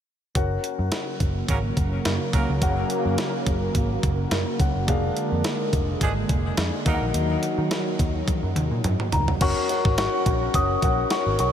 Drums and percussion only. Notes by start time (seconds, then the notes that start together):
0.35 kick, closed hi-hat
0.64 closed hi-hat
0.92 snare, closed hi-hat
1.20 kick, closed hi-hat
1.49 kick, closed hi-hat
1.77 kick, closed hi-hat
2.05 snare, closed hi-hat
2.33 kick, closed hi-hat
2.62 kick, closed hi-hat
2.90 closed hi-hat
3.18 snare, closed hi-hat
3.47 kick, closed hi-hat
3.75 kick, closed hi-hat
4.03 kick, closed hi-hat
4.31 snare, closed hi-hat
4.60 kick, closed hi-hat
4.88 kick, closed hi-hat
5.17 closed hi-hat
5.44 snare, closed hi-hat
5.73 kick, closed hi-hat
6.01 kick, closed hi-hat
6.29 kick, closed hi-hat
6.57 snare, closed hi-hat
6.86 kick, closed hi-hat
7.14 closed hi-hat
7.43 closed hi-hat
7.71 snare, closed hi-hat
7.99 kick, closed hi-hat
8.28 kick, closed hi-hat, high tom
8.56 closed hi-hat, mid tom
8.84 closed hi-hat, mid tom
9.00 mid tom
9.12 closed hi-hat, floor tom
9.28 floor tom
9.41 kick, closed hi-hat, crash
9.69 closed hi-hat
9.85 kick
9.98 snare, closed hi-hat
10.26 kick, closed hi-hat
10.54 kick, closed hi-hat
10.82 kick, closed hi-hat
11.10 snare, closed hi-hat
11.39 closed hi-hat